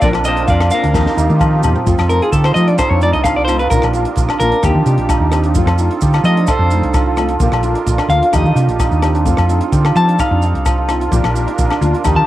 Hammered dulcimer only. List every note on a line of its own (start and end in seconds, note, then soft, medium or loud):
0.00 0.25 C4 medium
0.00 0.36 D4 medium
0.00 0.47 F4 medium
0.00 1.28 G4 medium
0.00 1.09 A4 medium
0.25 1.75 C4 medium
0.37 0.70 D4 medium
0.47 1.05 F4 medium
0.71 0.82 D4 medium
0.82 1.00 D4 medium
0.94 1.16 D#4 medium
1.05 1.39 F4 medium
1.17 2.08 D#4 medium
1.28 1.62 G4 medium
1.39 1.86 F4 medium
1.63 2.33 G4 medium
1.75 5.33 C4 medium
1.86 2.21 F4 medium
2.09 2.73 D#4 medium
2.21 2.45 F4 medium
2.33 3.71 G4 medium
2.45 3.25 F4 medium
2.67 2.85 D4 medium
2.79 2.97 D#4 medium
2.91 3.08 D4 medium
3.02 3.49 D#4 medium
3.26 3.37 F4 medium
3.37 3.60 F4 medium
3.49 4.06 D#4 medium
3.61 3.95 F4 medium
3.71 6.02 G4 medium
3.96 4.18 F4 medium
4.06 4.36 D#4 medium
4.18 4.74 F4 medium
4.30 4.52 D4 medium
4.52 4.69 D4 medium
4.63 4.93 D#4 medium
4.75 5.56 F4 medium
4.87 5.16 D4 medium
5.10 5.21 D#4 medium
5.21 5.51 D#4 medium
5.33 9.03 C4 medium
5.45 5.85 D4 medium
5.57 5.90 F4 medium
5.79 6.43 D#4 medium
5.91 6.13 F4 medium
6.02 7.42 G4 medium
6.14 6.94 F4 medium
6.37 6.60 D4 medium
6.49 9.42 A4 medium
6.61 6.78 D4 medium
6.72 7.17 D#4 medium
6.94 7.05 F4 medium
7.06 7.30 F4 medium
7.17 7.76 D#4 medium
7.30 7.64 F4 medium
7.42 9.71 G4 medium
7.64 7.87 F4 medium
7.76 8.04 D#4 medium
7.87 8.21 F4 medium
7.98 8.38 D4 medium
8.22 8.44 F4 medium
8.32 8.61 D#4 medium
8.44 9.25 F4 medium
8.55 8.85 D4 medium
8.79 8.91 D#4 medium
8.92 9.20 D#4 medium
9.03 12.27 C4 medium
9.14 9.55 D4 medium
9.25 9.61 F4 medium
9.49 10.13 D#4 medium
9.61 9.84 F4 medium
9.72 11.11 G4 medium
9.84 10.65 F4 medium
10.07 10.25 D4 medium
10.19 10.38 D#4 medium
10.32 10.49 D4 medium
10.43 10.88 D#4 medium
10.66 10.77 F4 medium
10.78 11.01 F4 medium
10.89 11.47 D#4 medium
11.01 11.58 F4 medium
11.11 12.27 G4 medium
11.47 11.77 D#4 medium
11.59 11.93 F4 medium
11.71 12.10 D4 medium
11.93 12.16 F4 medium
12.04 12.27 D#4 medium
12.16 12.27 F4 medium